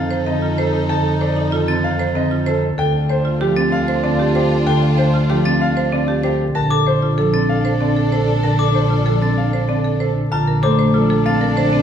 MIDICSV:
0, 0, Header, 1, 8, 480
1, 0, Start_track
1, 0, Tempo, 314136
1, 1368, Time_signature, 6, 2, 24, 8
1, 18064, End_track
2, 0, Start_track
2, 0, Title_t, "Glockenspiel"
2, 0, Program_c, 0, 9
2, 2570, Note_on_c, 0, 93, 69
2, 2881, Note_off_c, 0, 93, 0
2, 5446, Note_on_c, 0, 93, 73
2, 5759, Note_off_c, 0, 93, 0
2, 8333, Note_on_c, 0, 93, 74
2, 8641, Note_off_c, 0, 93, 0
2, 10245, Note_on_c, 0, 86, 86
2, 10559, Note_off_c, 0, 86, 0
2, 11210, Note_on_c, 0, 93, 66
2, 11521, Note_off_c, 0, 93, 0
2, 13127, Note_on_c, 0, 86, 78
2, 13439, Note_off_c, 0, 86, 0
2, 14094, Note_on_c, 0, 93, 59
2, 14402, Note_off_c, 0, 93, 0
2, 15766, Note_on_c, 0, 82, 69
2, 16079, Note_off_c, 0, 82, 0
2, 16247, Note_on_c, 0, 86, 82
2, 16560, Note_off_c, 0, 86, 0
2, 17207, Note_on_c, 0, 93, 70
2, 17519, Note_off_c, 0, 93, 0
2, 18064, End_track
3, 0, Start_track
3, 0, Title_t, "Grand piano"
3, 0, Program_c, 1, 0
3, 0, Note_on_c, 1, 77, 77
3, 241, Note_off_c, 1, 77, 0
3, 408, Note_on_c, 1, 75, 66
3, 720, Note_off_c, 1, 75, 0
3, 896, Note_on_c, 1, 69, 63
3, 1203, Note_off_c, 1, 69, 0
3, 1369, Note_on_c, 1, 81, 86
3, 1680, Note_off_c, 1, 81, 0
3, 1855, Note_on_c, 1, 74, 67
3, 2162, Note_off_c, 1, 74, 0
3, 2337, Note_on_c, 1, 69, 68
3, 2643, Note_off_c, 1, 69, 0
3, 2813, Note_on_c, 1, 77, 87
3, 3122, Note_off_c, 1, 77, 0
3, 3298, Note_on_c, 1, 75, 71
3, 3603, Note_off_c, 1, 75, 0
3, 3780, Note_on_c, 1, 69, 74
3, 4084, Note_off_c, 1, 69, 0
3, 4262, Note_on_c, 1, 79, 91
3, 4565, Note_off_c, 1, 79, 0
3, 4738, Note_on_c, 1, 72, 68
3, 5043, Note_off_c, 1, 72, 0
3, 5215, Note_on_c, 1, 67, 76
3, 5522, Note_off_c, 1, 67, 0
3, 5686, Note_on_c, 1, 77, 93
3, 5999, Note_off_c, 1, 77, 0
3, 6167, Note_on_c, 1, 74, 75
3, 6479, Note_off_c, 1, 74, 0
3, 6656, Note_on_c, 1, 67, 67
3, 6963, Note_off_c, 1, 67, 0
3, 7131, Note_on_c, 1, 79, 94
3, 7441, Note_off_c, 1, 79, 0
3, 7616, Note_on_c, 1, 72, 75
3, 7923, Note_off_c, 1, 72, 0
3, 8090, Note_on_c, 1, 67, 75
3, 8401, Note_off_c, 1, 67, 0
3, 8577, Note_on_c, 1, 77, 88
3, 8883, Note_off_c, 1, 77, 0
3, 9055, Note_on_c, 1, 74, 73
3, 9362, Note_off_c, 1, 74, 0
3, 9534, Note_on_c, 1, 67, 73
3, 9842, Note_off_c, 1, 67, 0
3, 10013, Note_on_c, 1, 81, 90
3, 10322, Note_off_c, 1, 81, 0
3, 10498, Note_on_c, 1, 72, 70
3, 10803, Note_off_c, 1, 72, 0
3, 10986, Note_on_c, 1, 69, 70
3, 11286, Note_off_c, 1, 69, 0
3, 11450, Note_on_c, 1, 77, 80
3, 11761, Note_off_c, 1, 77, 0
3, 11943, Note_on_c, 1, 74, 64
3, 12245, Note_off_c, 1, 74, 0
3, 12419, Note_on_c, 1, 69, 60
3, 12724, Note_off_c, 1, 69, 0
3, 12898, Note_on_c, 1, 81, 75
3, 13203, Note_off_c, 1, 81, 0
3, 13370, Note_on_c, 1, 72, 61
3, 13680, Note_off_c, 1, 72, 0
3, 13859, Note_on_c, 1, 69, 64
3, 14164, Note_off_c, 1, 69, 0
3, 14328, Note_on_c, 1, 77, 73
3, 14640, Note_off_c, 1, 77, 0
3, 14810, Note_on_c, 1, 74, 60
3, 15121, Note_off_c, 1, 74, 0
3, 15280, Note_on_c, 1, 69, 56
3, 15597, Note_off_c, 1, 69, 0
3, 15765, Note_on_c, 1, 81, 88
3, 16079, Note_off_c, 1, 81, 0
3, 16245, Note_on_c, 1, 72, 74
3, 16559, Note_off_c, 1, 72, 0
3, 16722, Note_on_c, 1, 69, 72
3, 17038, Note_off_c, 1, 69, 0
3, 17199, Note_on_c, 1, 77, 86
3, 17517, Note_off_c, 1, 77, 0
3, 17679, Note_on_c, 1, 74, 75
3, 17997, Note_off_c, 1, 74, 0
3, 18064, End_track
4, 0, Start_track
4, 0, Title_t, "Marimba"
4, 0, Program_c, 2, 12
4, 161, Note_on_c, 2, 72, 79
4, 404, Note_on_c, 2, 60, 67
4, 478, Note_off_c, 2, 72, 0
4, 645, Note_on_c, 2, 65, 64
4, 718, Note_off_c, 2, 60, 0
4, 888, Note_on_c, 2, 72, 82
4, 959, Note_off_c, 2, 65, 0
4, 1200, Note_off_c, 2, 72, 0
4, 1366, Note_on_c, 2, 69, 70
4, 1679, Note_off_c, 2, 69, 0
4, 1847, Note_on_c, 2, 72, 66
4, 2084, Note_on_c, 2, 63, 67
4, 2160, Note_off_c, 2, 72, 0
4, 2327, Note_on_c, 2, 65, 90
4, 2399, Note_off_c, 2, 63, 0
4, 2570, Note_on_c, 2, 60, 71
4, 2639, Note_off_c, 2, 65, 0
4, 2880, Note_off_c, 2, 60, 0
4, 3048, Note_on_c, 2, 72, 88
4, 3288, Note_on_c, 2, 60, 72
4, 3360, Note_off_c, 2, 72, 0
4, 3533, Note_on_c, 2, 65, 70
4, 3600, Note_off_c, 2, 60, 0
4, 3765, Note_on_c, 2, 72, 89
4, 3842, Note_off_c, 2, 65, 0
4, 4079, Note_off_c, 2, 72, 0
4, 4249, Note_on_c, 2, 69, 75
4, 4560, Note_off_c, 2, 69, 0
4, 4729, Note_on_c, 2, 72, 72
4, 4965, Note_on_c, 2, 65, 75
4, 5040, Note_off_c, 2, 72, 0
4, 5209, Note_on_c, 2, 67, 93
4, 5279, Note_off_c, 2, 65, 0
4, 5448, Note_on_c, 2, 60, 80
4, 5520, Note_off_c, 2, 67, 0
4, 5760, Note_off_c, 2, 60, 0
4, 5932, Note_on_c, 2, 72, 89
4, 6166, Note_on_c, 2, 60, 75
4, 6241, Note_off_c, 2, 72, 0
4, 6408, Note_on_c, 2, 67, 74
4, 6479, Note_off_c, 2, 60, 0
4, 6650, Note_on_c, 2, 72, 89
4, 6720, Note_off_c, 2, 67, 0
4, 6961, Note_off_c, 2, 72, 0
4, 7130, Note_on_c, 2, 69, 76
4, 7441, Note_off_c, 2, 69, 0
4, 7607, Note_on_c, 2, 72, 71
4, 7850, Note_on_c, 2, 65, 68
4, 7920, Note_off_c, 2, 72, 0
4, 8094, Note_on_c, 2, 67, 97
4, 8161, Note_off_c, 2, 65, 0
4, 8339, Note_on_c, 2, 60, 79
4, 8402, Note_off_c, 2, 67, 0
4, 8644, Note_off_c, 2, 60, 0
4, 8813, Note_on_c, 2, 72, 88
4, 9055, Note_on_c, 2, 60, 74
4, 9122, Note_off_c, 2, 72, 0
4, 9290, Note_on_c, 2, 67, 69
4, 9362, Note_off_c, 2, 60, 0
4, 9527, Note_on_c, 2, 72, 90
4, 9600, Note_off_c, 2, 67, 0
4, 9839, Note_off_c, 2, 72, 0
4, 10009, Note_on_c, 2, 70, 72
4, 10253, Note_on_c, 2, 69, 81
4, 10320, Note_off_c, 2, 70, 0
4, 10489, Note_on_c, 2, 72, 70
4, 10562, Note_off_c, 2, 69, 0
4, 10733, Note_on_c, 2, 65, 70
4, 10800, Note_off_c, 2, 72, 0
4, 10970, Note_on_c, 2, 69, 82
4, 11042, Note_off_c, 2, 65, 0
4, 11210, Note_on_c, 2, 60, 68
4, 11280, Note_off_c, 2, 69, 0
4, 11520, Note_off_c, 2, 60, 0
4, 11686, Note_on_c, 2, 72, 83
4, 11928, Note_on_c, 2, 60, 67
4, 11999, Note_off_c, 2, 72, 0
4, 12170, Note_on_c, 2, 69, 61
4, 12240, Note_off_c, 2, 60, 0
4, 12411, Note_on_c, 2, 72, 82
4, 12481, Note_off_c, 2, 69, 0
4, 12721, Note_off_c, 2, 72, 0
4, 12888, Note_on_c, 2, 70, 65
4, 13123, Note_on_c, 2, 69, 68
4, 13200, Note_off_c, 2, 70, 0
4, 13365, Note_on_c, 2, 72, 56
4, 13438, Note_off_c, 2, 69, 0
4, 13602, Note_on_c, 2, 65, 59
4, 13679, Note_off_c, 2, 72, 0
4, 13841, Note_on_c, 2, 69, 77
4, 13918, Note_off_c, 2, 65, 0
4, 14082, Note_on_c, 2, 60, 63
4, 14158, Note_off_c, 2, 69, 0
4, 14398, Note_off_c, 2, 60, 0
4, 14566, Note_on_c, 2, 72, 69
4, 14801, Note_on_c, 2, 60, 60
4, 14879, Note_off_c, 2, 72, 0
4, 15042, Note_on_c, 2, 69, 57
4, 15117, Note_off_c, 2, 60, 0
4, 15284, Note_on_c, 2, 72, 72
4, 15358, Note_off_c, 2, 69, 0
4, 15598, Note_off_c, 2, 72, 0
4, 15772, Note_on_c, 2, 65, 71
4, 16007, Note_on_c, 2, 70, 68
4, 16081, Note_off_c, 2, 65, 0
4, 16241, Note_on_c, 2, 69, 84
4, 16320, Note_off_c, 2, 70, 0
4, 16484, Note_on_c, 2, 72, 69
4, 16557, Note_off_c, 2, 69, 0
4, 16719, Note_on_c, 2, 65, 76
4, 16798, Note_off_c, 2, 72, 0
4, 16962, Note_on_c, 2, 69, 92
4, 17037, Note_off_c, 2, 65, 0
4, 17202, Note_on_c, 2, 60, 69
4, 17278, Note_off_c, 2, 69, 0
4, 17438, Note_on_c, 2, 70, 71
4, 17518, Note_off_c, 2, 60, 0
4, 17681, Note_on_c, 2, 72, 93
4, 17757, Note_off_c, 2, 70, 0
4, 17923, Note_on_c, 2, 60, 73
4, 17997, Note_off_c, 2, 72, 0
4, 18064, Note_off_c, 2, 60, 0
4, 18064, End_track
5, 0, Start_track
5, 0, Title_t, "Violin section"
5, 0, Program_c, 3, 48
5, 0, Note_on_c, 3, 63, 62
5, 0, Note_on_c, 3, 69, 68
5, 3949, Note_off_c, 3, 63, 0
5, 3950, Note_off_c, 3, 69, 0
5, 4257, Note_on_c, 3, 62, 75
5, 4262, Note_on_c, 3, 65, 77
5, 9712, Note_off_c, 3, 62, 0
5, 9713, Note_off_c, 3, 65, 0
5, 10012, Note_on_c, 3, 62, 75
5, 10017, Note_on_c, 3, 69, 72
5, 15469, Note_off_c, 3, 62, 0
5, 15471, Note_off_c, 3, 69, 0
5, 15764, Note_on_c, 3, 69, 74
5, 15767, Note_on_c, 3, 62, 73
5, 18064, Note_off_c, 3, 62, 0
5, 18064, Note_off_c, 3, 69, 0
5, 18064, End_track
6, 0, Start_track
6, 0, Title_t, "Clarinet"
6, 0, Program_c, 4, 71
6, 0, Note_on_c, 4, 63, 69
6, 3943, Note_off_c, 4, 63, 0
6, 4250, Note_on_c, 4, 65, 78
6, 9708, Note_off_c, 4, 65, 0
6, 10002, Note_on_c, 4, 62, 77
6, 15464, Note_off_c, 4, 62, 0
6, 15764, Note_on_c, 4, 62, 81
6, 18064, Note_off_c, 4, 62, 0
6, 18064, End_track
7, 0, Start_track
7, 0, Title_t, "Marimba"
7, 0, Program_c, 5, 12
7, 403, Note_on_c, 5, 50, 62
7, 718, Note_off_c, 5, 50, 0
7, 1367, Note_on_c, 5, 50, 76
7, 1680, Note_off_c, 5, 50, 0
7, 2332, Note_on_c, 5, 51, 74
7, 2641, Note_off_c, 5, 51, 0
7, 3293, Note_on_c, 5, 50, 68
7, 3602, Note_off_c, 5, 50, 0
7, 4253, Note_on_c, 5, 50, 84
7, 4562, Note_off_c, 5, 50, 0
7, 5205, Note_on_c, 5, 53, 77
7, 5519, Note_off_c, 5, 53, 0
7, 6171, Note_on_c, 5, 50, 69
7, 6481, Note_off_c, 5, 50, 0
7, 7134, Note_on_c, 5, 50, 90
7, 7442, Note_off_c, 5, 50, 0
7, 8093, Note_on_c, 5, 53, 74
7, 8402, Note_off_c, 5, 53, 0
7, 9059, Note_on_c, 5, 50, 70
7, 9364, Note_off_c, 5, 50, 0
7, 10016, Note_on_c, 5, 50, 84
7, 10323, Note_off_c, 5, 50, 0
7, 10967, Note_on_c, 5, 53, 69
7, 11280, Note_off_c, 5, 53, 0
7, 11923, Note_on_c, 5, 50, 60
7, 12238, Note_off_c, 5, 50, 0
7, 12891, Note_on_c, 5, 50, 73
7, 13201, Note_off_c, 5, 50, 0
7, 13847, Note_on_c, 5, 53, 61
7, 14159, Note_off_c, 5, 53, 0
7, 14800, Note_on_c, 5, 50, 57
7, 15117, Note_off_c, 5, 50, 0
7, 15759, Note_on_c, 5, 50, 87
7, 16077, Note_off_c, 5, 50, 0
7, 16244, Note_on_c, 5, 57, 74
7, 16558, Note_off_c, 5, 57, 0
7, 16713, Note_on_c, 5, 53, 72
7, 17035, Note_off_c, 5, 53, 0
7, 17677, Note_on_c, 5, 50, 67
7, 17996, Note_off_c, 5, 50, 0
7, 18064, End_track
8, 0, Start_track
8, 0, Title_t, "Double bass"
8, 0, Program_c, 6, 43
8, 0, Note_on_c, 6, 41, 63
8, 4092, Note_off_c, 6, 41, 0
8, 4249, Note_on_c, 6, 38, 75
8, 9851, Note_off_c, 6, 38, 0
8, 10016, Note_on_c, 6, 34, 74
8, 15615, Note_off_c, 6, 34, 0
8, 15773, Note_on_c, 6, 34, 74
8, 18064, Note_off_c, 6, 34, 0
8, 18064, End_track
0, 0, End_of_file